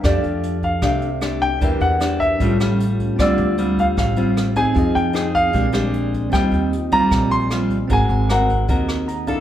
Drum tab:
HH |xxxxxxxx|xxxxxxxx|xxxxxxxx|xxxxxxxx|
SD |r---r-r-|--r--r--|r---r-r-|--r--r--|
BD |o--oo--o|o--oo--o|o--oo--o|o--oo--o|

HH |xxxxxxxx|xxxxxxxx|
SD |r---r-r-|--r--r--|
BD |o--oo--o|o--oo--o|